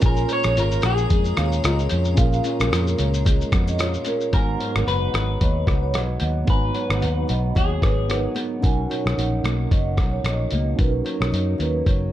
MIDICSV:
0, 0, Header, 1, 8, 480
1, 0, Start_track
1, 0, Tempo, 537634
1, 27, Time_signature, 4, 2, 24, 8
1, 10823, End_track
2, 0, Start_track
2, 0, Title_t, "Vibraphone"
2, 0, Program_c, 0, 11
2, 16, Note_on_c, 0, 80, 94
2, 249, Note_off_c, 0, 80, 0
2, 395, Note_on_c, 0, 73, 67
2, 724, Note_off_c, 0, 73, 0
2, 1220, Note_on_c, 0, 77, 74
2, 1349, Note_off_c, 0, 77, 0
2, 1467, Note_on_c, 0, 75, 71
2, 1592, Note_off_c, 0, 75, 0
2, 1700, Note_on_c, 0, 73, 72
2, 1829, Note_off_c, 0, 73, 0
2, 1940, Note_on_c, 0, 77, 95
2, 2171, Note_off_c, 0, 77, 0
2, 2319, Note_on_c, 0, 70, 79
2, 2646, Note_off_c, 0, 70, 0
2, 2912, Note_on_c, 0, 73, 71
2, 3036, Note_off_c, 0, 73, 0
2, 3293, Note_on_c, 0, 75, 71
2, 3394, Note_off_c, 0, 75, 0
2, 3396, Note_on_c, 0, 73, 79
2, 3517, Note_off_c, 0, 73, 0
2, 3639, Note_on_c, 0, 70, 76
2, 3759, Note_off_c, 0, 70, 0
2, 3881, Note_on_c, 0, 80, 93
2, 4000, Note_off_c, 0, 80, 0
2, 4252, Note_on_c, 0, 78, 65
2, 4574, Note_off_c, 0, 78, 0
2, 4838, Note_on_c, 0, 75, 68
2, 4959, Note_off_c, 0, 75, 0
2, 5202, Note_on_c, 0, 73, 78
2, 5310, Note_off_c, 0, 73, 0
2, 5313, Note_on_c, 0, 75, 66
2, 5437, Note_off_c, 0, 75, 0
2, 5555, Note_on_c, 0, 75, 64
2, 5678, Note_off_c, 0, 75, 0
2, 5790, Note_on_c, 0, 80, 80
2, 5916, Note_off_c, 0, 80, 0
2, 6161, Note_on_c, 0, 78, 70
2, 6264, Note_off_c, 0, 78, 0
2, 6515, Note_on_c, 0, 75, 71
2, 6741, Note_off_c, 0, 75, 0
2, 6987, Note_on_c, 0, 71, 69
2, 7339, Note_off_c, 0, 71, 0
2, 7718, Note_on_c, 0, 80, 89
2, 7840, Note_off_c, 0, 80, 0
2, 8079, Note_on_c, 0, 78, 66
2, 8409, Note_off_c, 0, 78, 0
2, 8677, Note_on_c, 0, 75, 76
2, 8800, Note_off_c, 0, 75, 0
2, 9037, Note_on_c, 0, 73, 73
2, 9143, Note_off_c, 0, 73, 0
2, 9393, Note_on_c, 0, 75, 67
2, 9518, Note_off_c, 0, 75, 0
2, 9633, Note_on_c, 0, 71, 86
2, 9758, Note_off_c, 0, 71, 0
2, 10000, Note_on_c, 0, 73, 71
2, 10104, Note_off_c, 0, 73, 0
2, 10358, Note_on_c, 0, 71, 73
2, 10582, Note_off_c, 0, 71, 0
2, 10823, End_track
3, 0, Start_track
3, 0, Title_t, "Ambient pad"
3, 0, Program_c, 1, 92
3, 0, Note_on_c, 1, 68, 73
3, 0, Note_on_c, 1, 73, 64
3, 0, Note_on_c, 1, 82, 84
3, 3833, Note_off_c, 1, 68, 0
3, 3833, Note_off_c, 1, 73, 0
3, 3833, Note_off_c, 1, 82, 0
3, 10823, End_track
4, 0, Start_track
4, 0, Title_t, "Clean electric guitar"
4, 0, Program_c, 2, 27
4, 51, Note_on_c, 2, 70, 89
4, 286, Note_off_c, 2, 70, 0
4, 292, Note_on_c, 2, 73, 106
4, 526, Note_off_c, 2, 73, 0
4, 532, Note_on_c, 2, 70, 88
4, 761, Note_off_c, 2, 70, 0
4, 765, Note_on_c, 2, 68, 82
4, 2416, Note_off_c, 2, 68, 0
4, 2416, Note_on_c, 2, 66, 82
4, 3361, Note_off_c, 2, 66, 0
4, 3874, Note_on_c, 2, 70, 92
4, 4318, Note_off_c, 2, 70, 0
4, 4354, Note_on_c, 2, 71, 90
4, 5757, Note_off_c, 2, 71, 0
4, 5802, Note_on_c, 2, 71, 85
4, 6721, Note_off_c, 2, 71, 0
4, 6762, Note_on_c, 2, 68, 67
4, 7441, Note_off_c, 2, 68, 0
4, 10823, End_track
5, 0, Start_track
5, 0, Title_t, "Tine electric piano"
5, 0, Program_c, 3, 4
5, 0, Control_c, 3, 64, 127
5, 0, Note_on_c, 3, 61, 67
5, 3, Note_on_c, 3, 65, 59
5, 19, Note_on_c, 3, 68, 61
5, 36, Note_on_c, 3, 70, 68
5, 40, Control_c, 3, 64, 0
5, 220, Control_c, 3, 64, 127
5, 1894, Note_off_c, 3, 61, 0
5, 1900, Note_off_c, 3, 65, 0
5, 1907, Note_off_c, 3, 68, 0
5, 1916, Note_off_c, 3, 70, 0
5, 1917, Note_on_c, 3, 61, 74
5, 1926, Note_on_c, 3, 65, 69
5, 1943, Note_on_c, 3, 68, 68
5, 1961, Note_on_c, 3, 70, 85
5, 3817, Note_off_c, 3, 61, 0
5, 3822, Note_off_c, 3, 65, 0
5, 3830, Note_off_c, 3, 68, 0
5, 3839, Note_off_c, 3, 70, 0
5, 3855, Note_on_c, 3, 59, 59
5, 3864, Note_on_c, 3, 63, 54
5, 3878, Control_c, 3, 64, 0
5, 3883, Note_on_c, 3, 66, 51
5, 3896, Note_on_c, 3, 82, 64
5, 4014, Control_c, 3, 64, 127
5, 5748, Note_off_c, 3, 59, 0
5, 5752, Note_off_c, 3, 63, 0
5, 5759, Note_on_c, 3, 59, 59
5, 5762, Note_off_c, 3, 66, 0
5, 5768, Note_off_c, 3, 82, 0
5, 5780, Note_on_c, 3, 63, 55
5, 5792, Note_on_c, 3, 66, 56
5, 5806, Note_on_c, 3, 82, 68
5, 7187, Note_off_c, 3, 59, 0
5, 7197, Note_off_c, 3, 63, 0
5, 7204, Note_off_c, 3, 66, 0
5, 7211, Note_off_c, 3, 82, 0
5, 7215, Note_on_c, 3, 59, 41
5, 7226, Note_on_c, 3, 63, 41
5, 7233, Note_on_c, 3, 66, 39
5, 7245, Note_on_c, 3, 70, 47
5, 7678, Note_on_c, 3, 61, 71
5, 7686, Note_off_c, 3, 63, 0
5, 7697, Note_on_c, 3, 63, 69
5, 7704, Note_off_c, 3, 59, 0
5, 7704, Note_off_c, 3, 66, 0
5, 7712, Note_off_c, 3, 70, 0
5, 7715, Note_on_c, 3, 66, 62
5, 7722, Control_c, 3, 64, 0
5, 7722, Note_on_c, 3, 70, 77
5, 7880, Control_c, 3, 64, 127
5, 9579, Note_off_c, 3, 61, 0
5, 9589, Note_off_c, 3, 63, 0
5, 9597, Note_off_c, 3, 66, 0
5, 9601, Note_off_c, 3, 70, 0
5, 9607, Note_on_c, 3, 61, 73
5, 9620, Note_on_c, 3, 63, 69
5, 9640, Note_on_c, 3, 66, 72
5, 9651, Note_on_c, 3, 70, 80
5, 10823, Note_off_c, 3, 61, 0
5, 10823, Note_off_c, 3, 63, 0
5, 10823, Note_off_c, 3, 66, 0
5, 10823, Note_off_c, 3, 70, 0
5, 10823, End_track
6, 0, Start_track
6, 0, Title_t, "Nylon-string guitar"
6, 0, Program_c, 4, 24
6, 0, Note_on_c, 4, 58, 63
6, 0, Note_on_c, 4, 68, 64
6, 15, Note_on_c, 4, 46, 84
6, 259, Note_on_c, 4, 61, 57
6, 504, Note_off_c, 4, 68, 0
6, 507, Note_on_c, 4, 65, 68
6, 737, Note_off_c, 4, 61, 0
6, 747, Note_on_c, 4, 61, 56
6, 983, Note_off_c, 4, 58, 0
6, 986, Note_on_c, 4, 56, 62
6, 1212, Note_off_c, 4, 61, 0
6, 1223, Note_on_c, 4, 61, 60
6, 1459, Note_off_c, 4, 65, 0
6, 1469, Note_on_c, 4, 65, 61
6, 1699, Note_off_c, 4, 61, 0
6, 1710, Note_on_c, 4, 61, 56
6, 1930, Note_off_c, 4, 46, 0
6, 1940, Note_on_c, 4, 46, 81
6, 2170, Note_off_c, 4, 61, 0
6, 2180, Note_on_c, 4, 61, 62
6, 2408, Note_off_c, 4, 65, 0
6, 2419, Note_on_c, 4, 65, 63
6, 2649, Note_off_c, 4, 61, 0
6, 2660, Note_on_c, 4, 61, 52
6, 2894, Note_off_c, 4, 56, 0
6, 2898, Note_on_c, 4, 56, 60
6, 3138, Note_off_c, 4, 61, 0
6, 3141, Note_on_c, 4, 59, 60
6, 3279, Note_off_c, 4, 59, 0
6, 3279, Note_on_c, 4, 61, 45
6, 3371, Note_off_c, 4, 65, 0
6, 3381, Note_on_c, 4, 65, 66
6, 3616, Note_off_c, 4, 61, 0
6, 3627, Note_on_c, 4, 61, 61
6, 3865, Note_off_c, 4, 46, 0
6, 3875, Note_on_c, 4, 44, 81
6, 3918, Note_off_c, 4, 65, 0
6, 3920, Note_off_c, 4, 61, 0
6, 4105, Note_on_c, 4, 54, 57
6, 4132, Note_off_c, 4, 56, 0
6, 4344, Note_on_c, 4, 63, 59
6, 4588, Note_on_c, 4, 59, 51
6, 4827, Note_off_c, 4, 54, 0
6, 4831, Note_on_c, 4, 54, 61
6, 5056, Note_off_c, 4, 63, 0
6, 5059, Note_on_c, 4, 63, 59
6, 5298, Note_off_c, 4, 54, 0
6, 5301, Note_on_c, 4, 54, 51
6, 5530, Note_off_c, 4, 59, 0
6, 5533, Note_on_c, 4, 59, 56
6, 5765, Note_off_c, 4, 44, 0
6, 5776, Note_on_c, 4, 44, 75
6, 6016, Note_off_c, 4, 54, 0
6, 6019, Note_on_c, 4, 54, 56
6, 6251, Note_off_c, 4, 63, 0
6, 6255, Note_on_c, 4, 63, 61
6, 6493, Note_off_c, 4, 59, 0
6, 6497, Note_on_c, 4, 59, 49
6, 6739, Note_off_c, 4, 54, 0
6, 6743, Note_on_c, 4, 54, 62
6, 6978, Note_off_c, 4, 63, 0
6, 6981, Note_on_c, 4, 63, 57
6, 7217, Note_off_c, 4, 54, 0
6, 7220, Note_on_c, 4, 54, 52
6, 7449, Note_off_c, 4, 59, 0
6, 7452, Note_on_c, 4, 59, 58
6, 7700, Note_on_c, 4, 47, 78
6, 7705, Note_off_c, 4, 44, 0
6, 7941, Note_off_c, 4, 54, 0
6, 7944, Note_on_c, 4, 54, 56
6, 8188, Note_off_c, 4, 63, 0
6, 8192, Note_on_c, 4, 63, 60
6, 8423, Note_off_c, 4, 59, 0
6, 8427, Note_on_c, 4, 58, 50
6, 8665, Note_off_c, 4, 54, 0
6, 8669, Note_on_c, 4, 54, 62
6, 8904, Note_off_c, 4, 63, 0
6, 8908, Note_on_c, 4, 63, 62
6, 9142, Note_off_c, 4, 54, 0
6, 9145, Note_on_c, 4, 54, 54
6, 9389, Note_off_c, 4, 58, 0
6, 9400, Note_on_c, 4, 58, 61
6, 9626, Note_off_c, 4, 47, 0
6, 9858, Note_off_c, 4, 54, 0
6, 9861, Note_on_c, 4, 54, 54
6, 10101, Note_off_c, 4, 63, 0
6, 10104, Note_on_c, 4, 63, 57
6, 10328, Note_off_c, 4, 58, 0
6, 10339, Note_on_c, 4, 58, 51
6, 10585, Note_off_c, 4, 54, 0
6, 10589, Note_on_c, 4, 54, 61
6, 10823, Note_off_c, 4, 54, 0
6, 10823, Note_off_c, 4, 58, 0
6, 10823, Note_off_c, 4, 63, 0
6, 10823, End_track
7, 0, Start_track
7, 0, Title_t, "Fingered electric bass"
7, 0, Program_c, 5, 33
7, 24, Note_on_c, 5, 34, 99
7, 217, Note_off_c, 5, 34, 0
7, 399, Note_on_c, 5, 34, 91
7, 485, Note_off_c, 5, 34, 0
7, 505, Note_on_c, 5, 32, 85
7, 698, Note_off_c, 5, 32, 0
7, 746, Note_on_c, 5, 34, 79
7, 938, Note_off_c, 5, 34, 0
7, 988, Note_on_c, 5, 41, 96
7, 1180, Note_off_c, 5, 41, 0
7, 1227, Note_on_c, 5, 39, 83
7, 1419, Note_off_c, 5, 39, 0
7, 1468, Note_on_c, 5, 37, 95
7, 1660, Note_off_c, 5, 37, 0
7, 1711, Note_on_c, 5, 41, 85
7, 1944, Note_on_c, 5, 34, 99
7, 1957, Note_off_c, 5, 41, 0
7, 2137, Note_off_c, 5, 34, 0
7, 2322, Note_on_c, 5, 34, 99
7, 2407, Note_off_c, 5, 34, 0
7, 2426, Note_on_c, 5, 41, 89
7, 2618, Note_off_c, 5, 41, 0
7, 2671, Note_on_c, 5, 37, 84
7, 3054, Note_off_c, 5, 37, 0
7, 3147, Note_on_c, 5, 41, 79
7, 3531, Note_off_c, 5, 41, 0
7, 3870, Note_on_c, 5, 32, 90
7, 4061, Note_off_c, 5, 32, 0
7, 4246, Note_on_c, 5, 32, 92
7, 4330, Note_off_c, 5, 32, 0
7, 4350, Note_on_c, 5, 30, 69
7, 4541, Note_off_c, 5, 30, 0
7, 4588, Note_on_c, 5, 32, 81
7, 4781, Note_off_c, 5, 32, 0
7, 4836, Note_on_c, 5, 39, 81
7, 5025, Note_off_c, 5, 39, 0
7, 5066, Note_on_c, 5, 37, 83
7, 5309, Note_off_c, 5, 37, 0
7, 5309, Note_on_c, 5, 35, 88
7, 5501, Note_off_c, 5, 35, 0
7, 5548, Note_on_c, 5, 39, 77
7, 5741, Note_off_c, 5, 39, 0
7, 5783, Note_on_c, 5, 32, 95
7, 5978, Note_off_c, 5, 32, 0
7, 6157, Note_on_c, 5, 32, 85
7, 6273, Note_on_c, 5, 39, 81
7, 6286, Note_off_c, 5, 32, 0
7, 6464, Note_off_c, 5, 39, 0
7, 6514, Note_on_c, 5, 35, 82
7, 6705, Note_off_c, 5, 35, 0
7, 6755, Note_on_c, 5, 39, 83
7, 6946, Note_off_c, 5, 39, 0
7, 6988, Note_on_c, 5, 32, 74
7, 7374, Note_off_c, 5, 32, 0
7, 7712, Note_on_c, 5, 35, 93
7, 7904, Note_off_c, 5, 35, 0
7, 8086, Note_on_c, 5, 35, 89
7, 8172, Note_off_c, 5, 35, 0
7, 8194, Note_on_c, 5, 34, 80
7, 8385, Note_off_c, 5, 34, 0
7, 8425, Note_on_c, 5, 35, 82
7, 8620, Note_off_c, 5, 35, 0
7, 8674, Note_on_c, 5, 30, 80
7, 8908, Note_on_c, 5, 35, 85
7, 8921, Note_off_c, 5, 30, 0
7, 9101, Note_off_c, 5, 35, 0
7, 9142, Note_on_c, 5, 34, 89
7, 9338, Note_off_c, 5, 34, 0
7, 9391, Note_on_c, 5, 37, 88
7, 9583, Note_off_c, 5, 37, 0
7, 9635, Note_on_c, 5, 35, 103
7, 9825, Note_off_c, 5, 35, 0
7, 10004, Note_on_c, 5, 35, 98
7, 10090, Note_off_c, 5, 35, 0
7, 10111, Note_on_c, 5, 42, 84
7, 10303, Note_off_c, 5, 42, 0
7, 10352, Note_on_c, 5, 39, 74
7, 10543, Note_off_c, 5, 39, 0
7, 10592, Note_on_c, 5, 30, 91
7, 10783, Note_off_c, 5, 30, 0
7, 10823, End_track
8, 0, Start_track
8, 0, Title_t, "Drums"
8, 15, Note_on_c, 9, 42, 70
8, 15, Note_on_c, 9, 82, 68
8, 23, Note_on_c, 9, 36, 109
8, 104, Note_off_c, 9, 42, 0
8, 104, Note_off_c, 9, 82, 0
8, 112, Note_off_c, 9, 36, 0
8, 147, Note_on_c, 9, 82, 45
8, 236, Note_off_c, 9, 82, 0
8, 257, Note_on_c, 9, 42, 44
8, 257, Note_on_c, 9, 82, 46
8, 346, Note_off_c, 9, 42, 0
8, 346, Note_off_c, 9, 82, 0
8, 386, Note_on_c, 9, 82, 55
8, 397, Note_on_c, 9, 37, 92
8, 475, Note_off_c, 9, 82, 0
8, 486, Note_off_c, 9, 37, 0
8, 509, Note_on_c, 9, 42, 63
8, 509, Note_on_c, 9, 82, 65
8, 598, Note_off_c, 9, 42, 0
8, 598, Note_off_c, 9, 82, 0
8, 637, Note_on_c, 9, 82, 47
8, 726, Note_off_c, 9, 82, 0
8, 734, Note_on_c, 9, 42, 49
8, 734, Note_on_c, 9, 82, 49
8, 744, Note_on_c, 9, 37, 92
8, 823, Note_off_c, 9, 42, 0
8, 823, Note_off_c, 9, 82, 0
8, 833, Note_off_c, 9, 37, 0
8, 870, Note_on_c, 9, 82, 50
8, 960, Note_off_c, 9, 82, 0
8, 985, Note_on_c, 9, 42, 68
8, 985, Note_on_c, 9, 82, 71
8, 987, Note_on_c, 9, 36, 80
8, 1074, Note_off_c, 9, 42, 0
8, 1074, Note_off_c, 9, 82, 0
8, 1076, Note_off_c, 9, 36, 0
8, 1113, Note_on_c, 9, 82, 52
8, 1202, Note_off_c, 9, 82, 0
8, 1221, Note_on_c, 9, 42, 44
8, 1221, Note_on_c, 9, 82, 45
8, 1225, Note_on_c, 9, 37, 90
8, 1310, Note_off_c, 9, 42, 0
8, 1310, Note_off_c, 9, 82, 0
8, 1314, Note_off_c, 9, 37, 0
8, 1358, Note_on_c, 9, 82, 49
8, 1448, Note_off_c, 9, 82, 0
8, 1462, Note_on_c, 9, 42, 72
8, 1462, Note_on_c, 9, 82, 70
8, 1475, Note_on_c, 9, 37, 97
8, 1552, Note_off_c, 9, 42, 0
8, 1552, Note_off_c, 9, 82, 0
8, 1564, Note_off_c, 9, 37, 0
8, 1598, Note_on_c, 9, 82, 39
8, 1687, Note_off_c, 9, 82, 0
8, 1691, Note_on_c, 9, 42, 52
8, 1691, Note_on_c, 9, 82, 50
8, 1781, Note_off_c, 9, 42, 0
8, 1781, Note_off_c, 9, 82, 0
8, 1828, Note_on_c, 9, 82, 46
8, 1917, Note_off_c, 9, 82, 0
8, 1939, Note_on_c, 9, 42, 72
8, 1939, Note_on_c, 9, 82, 70
8, 1944, Note_on_c, 9, 36, 103
8, 2028, Note_off_c, 9, 42, 0
8, 2028, Note_off_c, 9, 82, 0
8, 2033, Note_off_c, 9, 36, 0
8, 2077, Note_on_c, 9, 82, 44
8, 2166, Note_off_c, 9, 82, 0
8, 2180, Note_on_c, 9, 42, 44
8, 2180, Note_on_c, 9, 82, 46
8, 2269, Note_off_c, 9, 42, 0
8, 2269, Note_off_c, 9, 82, 0
8, 2320, Note_on_c, 9, 82, 50
8, 2331, Note_on_c, 9, 37, 92
8, 2410, Note_off_c, 9, 82, 0
8, 2420, Note_off_c, 9, 37, 0
8, 2437, Note_on_c, 9, 37, 94
8, 2438, Note_on_c, 9, 42, 66
8, 2438, Note_on_c, 9, 82, 66
8, 2526, Note_off_c, 9, 37, 0
8, 2528, Note_off_c, 9, 42, 0
8, 2528, Note_off_c, 9, 82, 0
8, 2564, Note_on_c, 9, 82, 45
8, 2653, Note_off_c, 9, 82, 0
8, 2665, Note_on_c, 9, 42, 51
8, 2665, Note_on_c, 9, 82, 52
8, 2754, Note_off_c, 9, 42, 0
8, 2754, Note_off_c, 9, 82, 0
8, 2802, Note_on_c, 9, 82, 54
8, 2891, Note_off_c, 9, 82, 0
8, 2912, Note_on_c, 9, 36, 72
8, 2913, Note_on_c, 9, 42, 72
8, 2913, Note_on_c, 9, 82, 69
8, 3002, Note_off_c, 9, 36, 0
8, 3002, Note_off_c, 9, 42, 0
8, 3002, Note_off_c, 9, 82, 0
8, 3047, Note_on_c, 9, 82, 50
8, 3136, Note_off_c, 9, 82, 0
8, 3145, Note_on_c, 9, 36, 91
8, 3146, Note_on_c, 9, 42, 42
8, 3146, Note_on_c, 9, 82, 42
8, 3149, Note_on_c, 9, 37, 90
8, 3234, Note_off_c, 9, 36, 0
8, 3235, Note_off_c, 9, 42, 0
8, 3235, Note_off_c, 9, 82, 0
8, 3239, Note_off_c, 9, 37, 0
8, 3282, Note_on_c, 9, 82, 49
8, 3372, Note_off_c, 9, 82, 0
8, 3385, Note_on_c, 9, 42, 71
8, 3385, Note_on_c, 9, 82, 73
8, 3397, Note_on_c, 9, 37, 93
8, 3474, Note_off_c, 9, 42, 0
8, 3474, Note_off_c, 9, 82, 0
8, 3487, Note_off_c, 9, 37, 0
8, 3517, Note_on_c, 9, 82, 42
8, 3606, Note_off_c, 9, 82, 0
8, 3612, Note_on_c, 9, 42, 49
8, 3612, Note_on_c, 9, 82, 54
8, 3702, Note_off_c, 9, 42, 0
8, 3702, Note_off_c, 9, 82, 0
8, 3754, Note_on_c, 9, 82, 42
8, 3843, Note_off_c, 9, 82, 0
8, 3865, Note_on_c, 9, 42, 68
8, 3868, Note_on_c, 9, 36, 94
8, 3954, Note_off_c, 9, 42, 0
8, 3957, Note_off_c, 9, 36, 0
8, 4111, Note_on_c, 9, 42, 45
8, 4200, Note_off_c, 9, 42, 0
8, 4247, Note_on_c, 9, 37, 91
8, 4337, Note_off_c, 9, 37, 0
8, 4357, Note_on_c, 9, 42, 61
8, 4446, Note_off_c, 9, 42, 0
8, 4588, Note_on_c, 9, 42, 49
8, 4598, Note_on_c, 9, 37, 90
8, 4677, Note_off_c, 9, 42, 0
8, 4687, Note_off_c, 9, 37, 0
8, 4830, Note_on_c, 9, 42, 65
8, 4832, Note_on_c, 9, 36, 71
8, 4919, Note_off_c, 9, 42, 0
8, 4921, Note_off_c, 9, 36, 0
8, 5064, Note_on_c, 9, 36, 80
8, 5069, Note_on_c, 9, 42, 42
8, 5073, Note_on_c, 9, 37, 83
8, 5153, Note_off_c, 9, 36, 0
8, 5159, Note_off_c, 9, 42, 0
8, 5162, Note_off_c, 9, 37, 0
8, 5302, Note_on_c, 9, 42, 67
8, 5314, Note_on_c, 9, 37, 80
8, 5391, Note_off_c, 9, 42, 0
8, 5404, Note_off_c, 9, 37, 0
8, 5533, Note_on_c, 9, 42, 48
8, 5622, Note_off_c, 9, 42, 0
8, 5781, Note_on_c, 9, 42, 65
8, 5784, Note_on_c, 9, 36, 107
8, 5870, Note_off_c, 9, 42, 0
8, 5873, Note_off_c, 9, 36, 0
8, 6023, Note_on_c, 9, 42, 42
8, 6112, Note_off_c, 9, 42, 0
8, 6164, Note_on_c, 9, 37, 92
8, 6254, Note_off_c, 9, 37, 0
8, 6270, Note_on_c, 9, 42, 64
8, 6359, Note_off_c, 9, 42, 0
8, 6509, Note_on_c, 9, 42, 48
8, 6598, Note_off_c, 9, 42, 0
8, 6751, Note_on_c, 9, 36, 77
8, 6756, Note_on_c, 9, 42, 68
8, 6840, Note_off_c, 9, 36, 0
8, 6845, Note_off_c, 9, 42, 0
8, 6984, Note_on_c, 9, 36, 77
8, 6990, Note_on_c, 9, 42, 42
8, 6994, Note_on_c, 9, 37, 83
8, 7073, Note_off_c, 9, 36, 0
8, 7079, Note_off_c, 9, 42, 0
8, 7083, Note_off_c, 9, 37, 0
8, 7229, Note_on_c, 9, 42, 71
8, 7241, Note_on_c, 9, 37, 83
8, 7318, Note_off_c, 9, 42, 0
8, 7331, Note_off_c, 9, 37, 0
8, 7462, Note_on_c, 9, 42, 51
8, 7551, Note_off_c, 9, 42, 0
8, 7710, Note_on_c, 9, 36, 101
8, 7713, Note_on_c, 9, 42, 71
8, 7799, Note_off_c, 9, 36, 0
8, 7802, Note_off_c, 9, 42, 0
8, 7955, Note_on_c, 9, 42, 44
8, 8044, Note_off_c, 9, 42, 0
8, 8097, Note_on_c, 9, 37, 88
8, 8187, Note_off_c, 9, 37, 0
8, 8202, Note_on_c, 9, 42, 66
8, 8291, Note_off_c, 9, 42, 0
8, 8432, Note_on_c, 9, 42, 45
8, 8442, Note_on_c, 9, 37, 91
8, 8521, Note_off_c, 9, 42, 0
8, 8531, Note_off_c, 9, 37, 0
8, 8673, Note_on_c, 9, 36, 79
8, 8676, Note_on_c, 9, 42, 66
8, 8762, Note_off_c, 9, 36, 0
8, 8765, Note_off_c, 9, 42, 0
8, 8905, Note_on_c, 9, 36, 84
8, 8906, Note_on_c, 9, 42, 42
8, 8909, Note_on_c, 9, 37, 83
8, 8995, Note_off_c, 9, 36, 0
8, 8995, Note_off_c, 9, 42, 0
8, 8999, Note_off_c, 9, 37, 0
8, 9147, Note_on_c, 9, 42, 71
8, 9160, Note_on_c, 9, 37, 88
8, 9236, Note_off_c, 9, 42, 0
8, 9249, Note_off_c, 9, 37, 0
8, 9379, Note_on_c, 9, 42, 50
8, 9469, Note_off_c, 9, 42, 0
8, 9631, Note_on_c, 9, 36, 103
8, 9631, Note_on_c, 9, 42, 69
8, 9720, Note_off_c, 9, 36, 0
8, 9720, Note_off_c, 9, 42, 0
8, 9872, Note_on_c, 9, 42, 45
8, 9962, Note_off_c, 9, 42, 0
8, 10015, Note_on_c, 9, 37, 88
8, 10105, Note_off_c, 9, 37, 0
8, 10122, Note_on_c, 9, 42, 61
8, 10211, Note_off_c, 9, 42, 0
8, 10356, Note_on_c, 9, 42, 45
8, 10446, Note_off_c, 9, 42, 0
8, 10593, Note_on_c, 9, 36, 78
8, 10596, Note_on_c, 9, 42, 63
8, 10682, Note_off_c, 9, 36, 0
8, 10685, Note_off_c, 9, 42, 0
8, 10823, End_track
0, 0, End_of_file